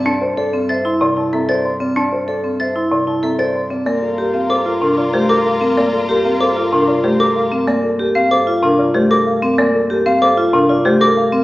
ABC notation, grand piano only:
X:1
M:6/4
L:1/8
Q:1/4=189
K:Gdor
V:1 name="Grand piano"
a c d z e c' d a e c c' d | a c d z e c' d a e c c' d | d A B f c f B d c A f B | d A B f c f B d c A f B |
d A B f c f B d c A f B | d A B f c f B d c A f B |]